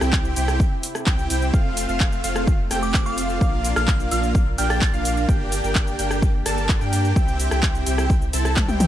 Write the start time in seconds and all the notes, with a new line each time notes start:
Already playing: C3 C4 E4 G4
0.01 C2 C4 E4 G4 G5, cross-stick, shaker
0.13 kick, clap, shaker
0.25 shaker
0.36 C2 C4 E4 G4 G5, open hi-hat, shaker
0.48 cross-stick, shaker
0.60 kick, shaker
0.83 open hi-hat, shaker
0.95 cross-stick, shaker
1.06 C2 C4 E4 G4 G5, kick, clap, shaker
1.19 shaker
1.30 C2 C4 E4 G4 G5, open hi-hat, shaker
1.42 shaker
1.54 F1 A3 C4 F4 F5, kick, shaker
1.77 open hi-hat, shaker
1.89 F1 A3 C4 F4 F5, shaker
2.00 kick, clap, shaker
2.12 shaker
2.24 F1 A3 C4 F4 F5, open hi-hat, shaker
2.36 cross-stick, shaker
2.47 kick, shaker
2.71 F1 A3 C4 G4 G5, cross-stick, open hi-hat, shaker
2.83 D6, shaker
2.94 kick, clap, shaker
3.06 F1 A3 C4 F4 F5 D6, shaker
3.18 open hi-hat, shaker
3.30 shaker
3.41 A#1 A#3 D4 F4 F5, kick, shaker
3.65 open hi-hat, shaker
3.76 A#1 A#3 D4 F4 F5 F6, cross-stick, shaker
3.88 F6, kick, clap, shaker
4.00 shaker
4.11 A#1 A#3 D4 F4 F5 F6, open hi-hat, shaker
4.23 shaker
4.35 kick, shaker
4.58 A#1 A#3 D4 G4 G5 F6, open hi-hat, shaker
4.70 A6, cross-stick, shaker
4.82 A6, kick, clap, shaker
4.93 A#1 A#3 D4 F4 F5, shaker
5.05 open hi-hat, shaker
5.17 shaker
5.29 G1 A#3 D4 G4 G5, kick, shaker
5.52 open hi-hat, shaker
5.64 G1 A#3 D4 G4 G5, shaker
5.75 kick, clap, shaker
5.87 shaker
5.99 G1 A#3 D4 G4 G5, open hi-hat, shaker
6.11 cross-stick, shaker
6.22 kick, shaker
6.46 G1 A#3 D4 A4 A5, cross-stick, open hi-hat, shaker
6.58 shaker
6.69 kick, clap, shaker
6.81 G2 A#3 D4 G4 G5, shaker
6.93 open hi-hat, shaker
7.05 shaker
7.16 C2 C3 C4 E4 G4 G5, kick, shaker
7.28 shaker
7.40 open hi-hat, shaker
7.51 C2 C4 E4 G4 G5, cross-stick, shaker
7.63 kick, clap, shaker
7.75 shaker
7.86 C2 C4 E4 G4 G5, open hi-hat, shaker
7.98 cross-stick, shaker
8.10 kick, shaker
8.22 shaker
8.33 C2 C4 E4 A4 A5, open hi-hat, shaker
8.45 cross-stick, shaker
8.56 kick, clap, high tom, shaker
8.68 C2 C4 E4 G4 G5, high tom, shaker
8.80 open hi-hat, mid tom, shaker